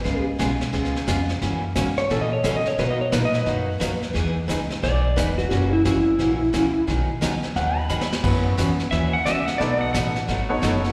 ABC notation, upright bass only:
X:1
M:4/4
L:1/8
Q:"Swing" 1/4=176
K:B
V:1 name="Upright bass" clef=bass
C,, z B,,, z C,,2 ^E,,2 | F,,2 G,, z A,,2 C,2 | B,,2 A,,2 F,,2 D,,2 | E,,2 C,,2 B,,,2 E,,,2 |
F,,,2 G,,,2 A,,,2 C,,2 | B,,, z C,,2 D,,2 G,,2 | F,,2 E,,2 D,,2 C,,2 | B,,,2 =A,,,2 G,,,2 F,,,2 |]